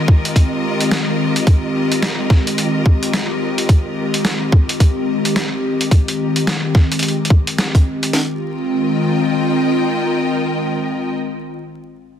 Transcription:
0.00 8.10 D#3 medium
0.00 8.09 G#3 medium
0.00 8.10 C4 medium
0.00 8.13 F4 medium
0.00 8.10 G4 medium
0.00 8.14 A#4 medium
0.00 8.14 D#5 medium
0.08 kick loud
0.25 closed hi-hat soft
0.36 kick medium
0.36 closed hi-hat medium
0.81 closed hi-hat soft
0.91 snare loud
0.91 closed hi-hat medium
1.36 closed hi-hat soft
1.47 kick loud
1.47 closed hi-hat medium
1.92 closed hi-hat soft
2.03 snare loud
2.03 closed hi-hat medium
2.30 kick medium
2.30 snare soft
2.47 closed hi-hat soft
2.58 closed hi-hat medium
2.86 kick loud
3.03 closed hi-hat soft
3.13 snare loud
3.13 closed hi-hat medium
3.58 closed hi-hat soft
3.69 kick loud
3.69 closed hi-hat medium
4.14 closed hi-hat soft
4.25 snare loud
4.25 closed hi-hat medium
4.52 kick medium
4.69 closed hi-hat soft
4.80 kick medium
4.80 closed hi-hat medium
5.25 closed hi-hat soft
5.36 snare loud
5.36 closed hi-hat medium
5.81 closed hi-hat soft
5.91 kick loud
5.91 closed hi-hat medium
6.08 closed hi-hat soft
6.36 closed hi-hat soft
6.47 snare loud
6.47 closed hi-hat medium
6.75 kick medium
6.75 snare soft
6.92 closed hi-hat soft
6.99 closed hi-hat soft
7.03 closed hi-hat medium
7.08 closed hi-hat soft
7.25 closed hi-hat soft
7.30 kick loud
7.47 closed hi-hat soft
7.58 snare loud
7.58 closed hi-hat medium
7.75 kick medium
7.75 closed hi-hat soft
8.03 closed hi-hat soft
8.13 11.12 D#3 medium
8.13 11.12 G#3 medium
8.13 11.12 C4 medium
8.13 11.12 F4 medium
8.13 snare loud
8.24 11.12 A#4 medium
8.33 11.12 D#5 medium
8.40 11.12 G5 medium

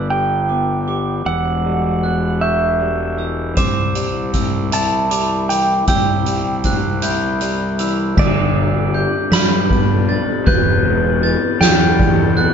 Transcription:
0.00 1.22 G1 soft
0.00 0.88 G2 soft
0.00 0.48 B3 soft
0.00 1.27 D4 soft
0.00 0.49 E6 soft
0.10 2.41 G4 soft
0.10 1.26 G5 medium
0.49 1.26 B3 soft
0.49 0.86 D6 soft
0.88 1.65 G3 soft
0.88 1.26 D6 medium
1.26 3.53 E1 soft
1.26 3.19 E2 soft
1.26 2.45 F#5 medium
1.26 2.03 E6 medium
1.65 2.79 G3 soft
2.03 3.57 B3 soft
2.03 2.42 F#6 soft
2.41 3.57 F#4 medium
2.41 3.24 E5 medium
2.41 3.18 G6 medium
2.80 3.95 G3 soft
3.18 5.49 E3 soft
3.18 3.57 E6 medium
3.57 5.84 C2 medium
3.57 5.49 C3 medium
3.57 4.30 C5 medium
3.57 4.34 D6 medium
3.57 kick medium
3.57 closed hi-hat medium
3.95 5.10 G3 soft
3.95 closed hi-hat soft
4.33 6.25 C4 soft
4.33 5.11 E6 medium
4.33 kick soft
4.33 closed hi-hat soft
4.72 6.64 E4 medium
4.72 5.49 A5 medium
4.72 closed hi-hat medium
5.11 6.26 G3 soft
5.11 5.48 D6 medium
5.11 closed hi-hat soft
5.49 7.41 E3 soft
5.49 5.87 G5 medium
5.49 5.87 D6 medium
5.49 closed hi-hat soft
5.88 8.14 C2 medium
5.88 7.79 C3 medium
5.88 7.76 G5 medium
5.88 6.64 E6 medium
5.88 kick medium
5.88 closed hi-hat medium
6.26 7.40 G3 soft
6.26 closed hi-hat soft
6.64 8.18 C4 medium
6.64 7.03 F#6 medium
6.64 kick medium
6.64 closed hi-hat soft
7.02 8.18 E4 medium
7.02 7.79 G6 medium
7.02 closed hi-hat medium
7.41 8.18 G3 soft
7.41 closed hi-hat soft
7.79 8.18 E3 medium
7.79 8.18 E6 medium
7.79 closed hi-hat soft
8.17 9.04 G1 medium
8.17 10.09 G2 medium
8.17 9.37 D5 medium
8.17 8.94 B6 medium
8.17 kick medium
8.17 crash medium
8.55 10.47 D3 medium
8.55 ride medium
8.94 11.22 G3 medium
8.94 9.33 G6 medium
8.94 ride medium
9.31 10.18 G2 medium
9.31 10.07 D4 medium
9.31 10.44 B5 medium
9.31 10.09 B6 medium
9.31 snare medium
9.31 ride medium
9.70 10.47 B3 medium
9.70 kick medium
9.70 ride medium
10.08 10.47 D4 medium
10.08 10.47 A6 medium
10.08 ride medium
10.45 11.33 E1 medium
10.45 12.37 E2 medium
10.45 11.65 B4 medium
10.45 11.23 G6 medium
10.45 kick medium
10.45 ride medium
10.83 12.54 B2 medium
10.83 ride medium
11.23 12.54 E3 medium
11.23 11.62 A6 medium
11.23 ride medium
11.60 12.47 E2 medium
11.60 12.36 B3 medium
11.60 12.54 G5 medium
11.60 12.38 G6 medium
11.60 snare medium
11.60 ride medium
11.99 12.54 G3 medium
11.99 kick medium
11.99 ride medium
12.37 12.54 B3 medium
12.37 12.54 F#6 medium
12.37 ride medium

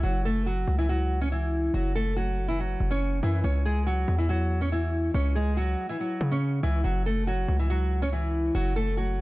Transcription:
0.03 0.65 F#1 loud
0.03 0.24 F#3 medium
0.03 0.23 F#4 medium
0.25 0.45 A3 medium
0.25 0.45 A4 medium
0.46 0.77 F#3 medium
0.46 0.76 F#4 medium
0.68 1.70 C#2 loud
0.78 0.89 E3 medium
0.78 0.88 E4 medium
0.89 1.19 F#3 medium
0.89 1.19 F#4 medium
1.21 1.31 C#4 medium
1.21 1.31 C#5 medium
1.32 1.72 E3 medium
1.32 1.72 E4 medium
1.74 2.76 F#1 loud
1.74 1.94 F#3 medium
1.74 1.94 F#4 medium
1.95 2.15 A3 medium
1.95 2.15 A4 medium
2.16 2.47 F#3 medium
2.16 2.46 F#4 medium
2.48 2.59 E3 medium
2.48 2.58 E4 medium
2.59 2.90 F#3 medium
2.59 2.89 F#4 medium
2.80 3.21 F#1 loud
2.91 3.21 C#4 medium
2.91 3.21 C#5 medium
3.23 3.43 F#2 loud
3.23 3.43 E3 medium
3.23 3.43 E4 medium
3.44 4.05 C#2 loud
3.44 3.64 C#4 medium
3.44 3.64 C#5 medium
3.65 3.86 G#3 medium
3.65 3.85 G#4 medium
3.86 4.17 F#3 medium
3.86 4.17 F#4 medium
4.08 5.10 E2 loud
4.18 4.29 E3 medium
4.18 4.28 E4 medium
4.29 4.60 F#3 medium
4.29 4.59 F#4 medium
4.61 4.71 C#4 medium
4.61 4.71 C#5 medium
4.72 5.12 E3 medium
4.72 5.12 E4 medium
5.14 5.76 C#2 loud
5.14 5.34 C#4 medium
5.14 5.34 C#5 medium
5.35 5.56 G#3 medium
5.35 5.55 G#4 medium
5.57 5.87 F#3 medium
5.57 5.87 F#4 medium
5.89 5.99 E3 medium
5.89 5.99 E4 medium
6.00 6.30 F#3 medium
6.00 6.30 F#4 medium
6.21 6.62 C#3 loud
6.31 6.61 C#4 medium
6.31 6.62 C#5 medium
6.63 6.84 C#2 loud
6.63 6.83 E3 medium
6.63 6.83 E4 medium
6.84 7.46 F#1 loud
6.84 7.04 F#3 medium
6.84 7.04 F#4 medium
7.06 7.26 A3 medium
7.06 7.26 A4 medium
7.27 7.58 F#3 medium
7.27 7.57 F#4 medium
7.48 8.51 C#2 loud
7.59 7.69 E3 medium
7.59 7.69 E4 medium
7.70 8.00 F#3 medium
7.70 8.00 F#4 medium
8.02 8.12 C#4 medium
8.02 8.12 C#5 medium
8.12 8.53 E3 medium
8.12 8.52 E4 medium
8.55 9.21 F#1 loud
8.55 8.75 F#3 medium
8.55 8.74 F#4 medium
8.76 8.96 A3 medium
8.76 8.96 A4 medium
8.97 9.21 F#3 medium
8.97 9.21 F#4 medium

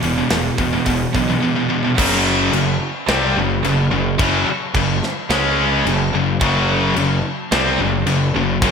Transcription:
0.03 0.22 E1 medium
0.03 0.17 E2 medium
0.03 0.17 B2 medium
0.03 open hi-hat medium
0.18 0.30 E2 medium
0.18 0.31 B2 medium
0.30 0.50 E1 medium
0.30 0.56 E2 medium
0.30 0.56 B2 medium
0.30 snare loud
0.30 open hi-hat medium
0.58 0.78 E1 medium
0.58 0.72 E2 medium
0.58 0.72 B2 medium
0.58 kick medium
0.58 open hi-hat medium
0.73 0.85 E2 medium
0.73 0.86 B2 medium
0.86 1.06 E1 medium
0.86 1.11 E2 medium
0.86 1.11 B2 medium
0.86 kick medium
0.86 open hi-hat medium
1.15 1.34 B1 medium
1.15 1.29 E2 medium
1.15 1.29 B2 medium
1.15 kick medium
1.15 open hi-hat soft
1.30 1.41 E2 medium
1.30 1.42 B2 medium
1.42 1.55 E2 medium
1.42 1.55 B2 medium
1.56 1.69 E2 medium
1.56 1.69 B2 medium
1.70 1.83 E2 medium
1.70 1.83 B2 medium
1.85 1.98 E2 medium
1.85 1.98 B2 medium
1.96 2.50 F#1 loud
1.96 2.52 F#2 loud
1.96 2.53 C#3 medium
1.96 2.51 F#3 loud
1.96 kick loud
1.96 crash loud
1.96 crash medium
2.00 2.53 F#3 loud
2.53 2.79 F#1 medium
2.53 2.75 F#2 medium
2.53 2.76 C#3 medium
2.53 crash medium
3.08 3.34 C2 loud
3.08 3.36 C3 loud
3.08 3.36 G3 loud
3.08 3.36 C4 loud
3.08 snare loud
3.08 crash medium
3.36 3.62 F#1 medium
3.36 3.59 F#2 medium
3.36 3.59 C#3 medium
3.64 3.90 F#1 medium
3.64 3.87 F#2 medium
3.64 3.87 C#3 medium
3.64 crash medium
3.91 4.18 F#1 medium
3.91 4.14 F#2 medium
3.91 4.14 C#3 medium
4.18 4.45 F#1 loud
4.18 4.46 F#2 loud
4.18 4.46 C#3 loud
4.18 4.47 F#3 loud
4.18 kick loud
4.18 crash medium
4.46 muted picked electric bass stroke soft
4.46 muted distorted electric guitar stroke medium
4.75 5.00 F#1 medium
4.75 4.98 F#2 medium
4.75 4.98 C#3 medium
4.75 kick medium
4.75 crash medium
5.03 snare soft
5.30 5.81 C#2 loud
5.30 5.85 C#3 loud
5.30 5.85 G#3 loud
5.30 5.86 C#4 loud
5.30 snare loud
5.30 crash medium
5.85 6.11 F#1 medium
5.85 6.09 F#2 medium
5.85 6.09 C#3 medium
5.85 crash medium
6.14 6.39 F#1 medium
6.14 6.36 F#2 medium
6.14 6.36 C#3 medium
6.41 6.92 F#1 loud
6.41 6.96 F#2 loud
6.41 6.96 C#3 loud
6.41 6.96 F#3 loud
6.41 kick loud
6.41 crash medium
6.96 7.22 F#1 medium
6.96 7.19 F#2 medium
6.96 7.19 C#3 medium
6.96 crash medium
7.52 7.78 C2 medium
7.52 7.79 C3 loud
7.52 7.79 G3 loud
7.52 7.79 C4 loud
7.52 snare loud
7.52 crash medium
7.79 8.05 F#1 medium
7.79 8.02 F#2 medium
7.79 8.02 C#3 medium
8.06 8.32 F#1 medium
8.06 8.29 F#2 medium
8.06 8.29 C#3 medium
8.06 crash medium
8.35 8.60 F#1 medium
8.35 8.57 F#2 medium
8.35 8.57 C#3 medium
8.62 8.71 F#1 loud
8.62 8.71 F#2 loud
8.62 8.71 C#3 loud
8.62 8.71 F#3 loud
8.62 kick loud
8.62 crash medium

